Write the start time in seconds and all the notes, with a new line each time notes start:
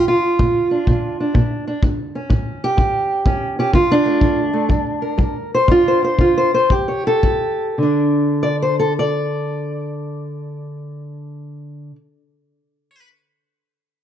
Already playing: A#2
0.08 F4
0.39 A#2, kick
0.71 D4
0.87 A#2, kick
1.20 D4
1.34 A#2, kick
1.67 D4
1.83 A2, kick
2.15 C#4
2.29 A2, kick
2.64 G4
2.77 A2, kick
3.26 A2 C#4, kick
3.59 C#4 G4
3.73 D3 F4, kick
3.92 D4
4.06 A3
4.21 D3, kick
4.53 A3
4.69 G3, kick
5.02 A#4
5.18 G3, kick
5.55 C5
5.68 D3 D4 F4, kick
5.88 C5
6.02 F4 C5
6.18 D3 F4, kick
6.38 C5
6.54 F4 C5
6.70 A2 G4, kick
6.88 C#5
7.07 G4 A4
7.23 A2, kick
7.78 D3
7.83 D4
8.43 D5
8.62 C5
8.79 A4
8.99 D5